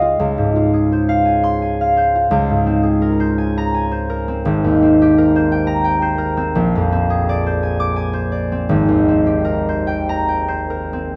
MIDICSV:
0, 0, Header, 1, 2, 480
1, 0, Start_track
1, 0, Key_signature, -4, "major"
1, 0, Tempo, 710059
1, 126, Time_signature, 6, 3, 24, 8
1, 3482, Tempo, 691244
1, 4442, Tempo, 719424
1, 5882, Tempo, 766284
1, 6362, Tempo, 831025
1, 7346, End_track
2, 0, Start_track
2, 0, Title_t, "Harp"
2, 0, Program_c, 0, 46
2, 0, Note_on_c, 0, 37, 72
2, 0, Note_on_c, 0, 49, 50
2, 0, Note_on_c, 0, 67, 58
2, 0, Note_on_c, 0, 75, 61
2, 0, Note_on_c, 0, 77, 66
2, 0, Note_on_c, 0, 79, 63
2, 0, Note_on_c, 0, 87, 81
2, 10, Note_on_c, 0, 65, 56
2, 124, Note_off_c, 0, 37, 0
2, 132, Note_on_c, 0, 37, 80
2, 148, Note_off_c, 0, 75, 0
2, 150, Note_off_c, 0, 87, 0
2, 151, Note_off_c, 0, 49, 0
2, 151, Note_off_c, 0, 79, 0
2, 152, Note_off_c, 0, 67, 0
2, 255, Note_on_c, 0, 44, 55
2, 369, Note_off_c, 0, 65, 0
2, 377, Note_on_c, 0, 65, 57
2, 497, Note_on_c, 0, 68, 55
2, 624, Note_on_c, 0, 72, 61
2, 727, Note_off_c, 0, 77, 0
2, 735, Note_on_c, 0, 77, 64
2, 847, Note_on_c, 0, 80, 58
2, 971, Note_on_c, 0, 84, 88
2, 1086, Note_off_c, 0, 80, 0
2, 1094, Note_on_c, 0, 80, 61
2, 1215, Note_off_c, 0, 77, 0
2, 1223, Note_on_c, 0, 77, 68
2, 1324, Note_off_c, 0, 72, 0
2, 1332, Note_on_c, 0, 72, 63
2, 1447, Note_off_c, 0, 65, 0
2, 1455, Note_on_c, 0, 65, 62
2, 1552, Note_off_c, 0, 37, 0
2, 1560, Note_on_c, 0, 37, 90
2, 1588, Note_off_c, 0, 44, 0
2, 1688, Note_on_c, 0, 44, 57
2, 1799, Note_on_c, 0, 60, 62
2, 1903, Note_off_c, 0, 68, 0
2, 1911, Note_on_c, 0, 68, 59
2, 2039, Note_on_c, 0, 70, 67
2, 2154, Note_off_c, 0, 72, 0
2, 2162, Note_on_c, 0, 72, 67
2, 2277, Note_off_c, 0, 80, 0
2, 2285, Note_on_c, 0, 80, 68
2, 2417, Note_on_c, 0, 82, 97
2, 2522, Note_off_c, 0, 80, 0
2, 2530, Note_on_c, 0, 80, 73
2, 2639, Note_off_c, 0, 72, 0
2, 2647, Note_on_c, 0, 72, 74
2, 2761, Note_off_c, 0, 70, 0
2, 2769, Note_on_c, 0, 70, 68
2, 2885, Note_off_c, 0, 60, 0
2, 2893, Note_on_c, 0, 60, 67
2, 3010, Note_off_c, 0, 37, 0
2, 3010, Note_on_c, 0, 32, 89
2, 3014, Note_off_c, 0, 44, 0
2, 3018, Note_off_c, 0, 65, 0
2, 3020, Note_off_c, 0, 77, 0
2, 3139, Note_on_c, 0, 39, 63
2, 3252, Note_off_c, 0, 60, 0
2, 3260, Note_on_c, 0, 60, 63
2, 3391, Note_on_c, 0, 67, 68
2, 3495, Note_off_c, 0, 70, 0
2, 3504, Note_on_c, 0, 70, 74
2, 3611, Note_off_c, 0, 84, 0
2, 3617, Note_off_c, 0, 72, 0
2, 3626, Note_on_c, 0, 72, 78
2, 3736, Note_on_c, 0, 79, 75
2, 3833, Note_off_c, 0, 82, 0
2, 3842, Note_on_c, 0, 82, 95
2, 3954, Note_off_c, 0, 79, 0
2, 3962, Note_on_c, 0, 79, 75
2, 4078, Note_off_c, 0, 72, 0
2, 4086, Note_on_c, 0, 72, 79
2, 4189, Note_off_c, 0, 70, 0
2, 4197, Note_on_c, 0, 70, 72
2, 4321, Note_off_c, 0, 60, 0
2, 4329, Note_on_c, 0, 60, 74
2, 4456, Note_on_c, 0, 34, 87
2, 4463, Note_off_c, 0, 79, 0
2, 4471, Note_off_c, 0, 32, 0
2, 4475, Note_off_c, 0, 39, 0
2, 4477, Note_off_c, 0, 67, 0
2, 4571, Note_off_c, 0, 68, 0
2, 4590, Note_on_c, 0, 41, 67
2, 4694, Note_off_c, 0, 60, 0
2, 4702, Note_on_c, 0, 60, 72
2, 4821, Note_on_c, 0, 68, 71
2, 4947, Note_on_c, 0, 74, 74
2, 5055, Note_off_c, 0, 72, 0
2, 5063, Note_on_c, 0, 72, 68
2, 5164, Note_off_c, 0, 80, 0
2, 5172, Note_on_c, 0, 80, 74
2, 5285, Note_on_c, 0, 86, 102
2, 5387, Note_off_c, 0, 80, 0
2, 5395, Note_on_c, 0, 80, 76
2, 5502, Note_off_c, 0, 72, 0
2, 5510, Note_on_c, 0, 72, 76
2, 5624, Note_off_c, 0, 74, 0
2, 5632, Note_on_c, 0, 74, 71
2, 5759, Note_off_c, 0, 60, 0
2, 5767, Note_on_c, 0, 60, 70
2, 5882, Note_on_c, 0, 32, 93
2, 5898, Note_off_c, 0, 74, 0
2, 5902, Note_off_c, 0, 86, 0
2, 5908, Note_off_c, 0, 34, 0
2, 5913, Note_off_c, 0, 41, 0
2, 6002, Note_on_c, 0, 39, 69
2, 6119, Note_off_c, 0, 60, 0
2, 6127, Note_on_c, 0, 60, 62
2, 6240, Note_on_c, 0, 67, 66
2, 6347, Note_off_c, 0, 70, 0
2, 6354, Note_on_c, 0, 70, 73
2, 6426, Note_off_c, 0, 82, 0
2, 6487, Note_off_c, 0, 72, 0
2, 6494, Note_on_c, 0, 72, 69
2, 6600, Note_on_c, 0, 79, 74
2, 6728, Note_on_c, 0, 82, 98
2, 6832, Note_off_c, 0, 79, 0
2, 6839, Note_on_c, 0, 79, 70
2, 6947, Note_off_c, 0, 72, 0
2, 6954, Note_on_c, 0, 72, 72
2, 7072, Note_off_c, 0, 70, 0
2, 7079, Note_on_c, 0, 70, 65
2, 7205, Note_off_c, 0, 60, 0
2, 7212, Note_on_c, 0, 60, 64
2, 7253, Note_off_c, 0, 68, 0
2, 7342, Note_off_c, 0, 32, 0
2, 7342, Note_off_c, 0, 67, 0
2, 7343, Note_off_c, 0, 39, 0
2, 7346, Note_off_c, 0, 60, 0
2, 7346, Note_off_c, 0, 70, 0
2, 7346, Note_off_c, 0, 72, 0
2, 7346, Note_off_c, 0, 79, 0
2, 7346, Note_off_c, 0, 80, 0
2, 7346, Note_off_c, 0, 82, 0
2, 7346, End_track
0, 0, End_of_file